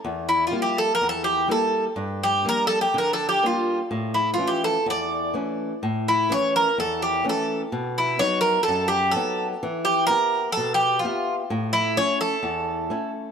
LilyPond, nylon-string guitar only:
\new Staff \with { instrumentName = "Nylon-string guitar" } { \time 4/4 \key a \phrygian \tempo 4 = 126 e,4 <g bes e'>4 e,4 <g bes e'>4 | g,4 <g bes d'>4 d4 <g bes d'>4 | a,4 <e a cis'>4 e,4 <e a cis'>4 | a,4 <e a cis'>4 e,4 <e a cis'>4 |
b,4 <fis b dis'>4 fis,4 <fis b dis'>4 | e4 <b e' g'>4 b,4 <b g' e''>4 | a,4 <a cis' e'>4 e,4 <a cis' e'>4 | }